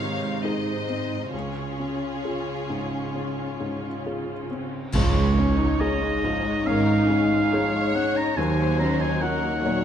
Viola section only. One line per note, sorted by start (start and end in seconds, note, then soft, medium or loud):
0.00 1.29 C3 medium
0.00 1.29 D#4 medium
1.33 4.69 C#4 soft
1.33 4.69 F4 soft
4.93 5.14 F3 medium
4.93 5.13 G#3 medium
5.15 5.37 G#3 medium
5.36 5.58 C#4 medium
5.57 5.80 D#4 medium
5.79 6.01 C#4 medium
6.02 6.23 G#3 medium
6.23 6.45 F3 soft
6.43 6.65 G#3 medium
6.66 6.86 C#4 medium
6.87 7.09 D#4 medium
7.08 7.30 C#4 medium
7.29 7.51 G#3 medium
7.51 7.73 F3 medium
7.74 7.95 G#3 medium
7.94 8.15 C#4 medium
8.16 8.37 D#4 medium
8.37 9.63 F#3 medium
8.58 8.79 A#3 medium
8.79 9.00 C#4 medium
9.01 9.22 D#4 soft
9.23 9.44 C#4 soft
9.44 9.64 A#3 medium
9.64 9.84 F#3 soft